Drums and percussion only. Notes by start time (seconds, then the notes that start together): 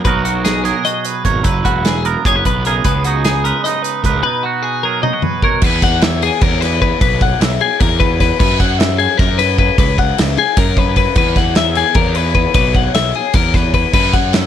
0.05 kick, closed hi-hat
0.25 closed hi-hat
0.45 snare, closed hi-hat
0.65 snare, closed hi-hat
0.85 closed hi-hat
1.05 closed hi-hat
1.25 kick, closed hi-hat
1.44 kick, closed hi-hat
1.65 kick, closed hi-hat
1.85 snare, closed hi-hat
2.05 closed hi-hat
2.25 kick, closed hi-hat
2.45 kick, closed hi-hat
2.65 closed hi-hat
2.84 kick, closed hi-hat
3.04 closed hi-hat
3.24 snare, closed hi-hat
3.45 closed hi-hat
3.65 snare, closed hi-hat
3.84 closed hi-hat
4.04 kick, closed hi-hat
5.03 high tom
5.22 mid tom
5.42 kick
5.62 kick, crash
5.82 kick, snare, ride
6.01 snare, ride
6.22 ride
6.41 kick, ride
6.62 snare, ride
6.82 kick, ride
7.01 kick, ride
7.21 kick, ride
7.41 snare, ride
7.61 ride
7.80 kick, ride
8.00 kick, ride
8.20 kick, snare, ride
8.40 kick, crash
8.60 kick, ride
8.80 snare, ride
8.99 ride
9.19 kick, snare, ride
9.39 snare, ride
9.58 kick, ride
9.78 kick, ride
9.98 kick, ride
10.18 snare, ride
10.37 ride
10.57 kick, snare, ride
10.77 kick, ride
10.96 kick, ride
11.15 kick, crash
11.36 kick, snare, ride
11.55 snare, ride
11.75 snare, ride
11.94 kick, ride
12.15 ride
12.34 kick, ride
12.54 kick, ride
12.74 kick, ride
12.95 snare, ride
13.15 ride
13.33 kick, ride
13.54 kick, snare, ride
13.74 kick, ride
13.93 kick, crash
14.13 kick, ride
14.33 snare, ride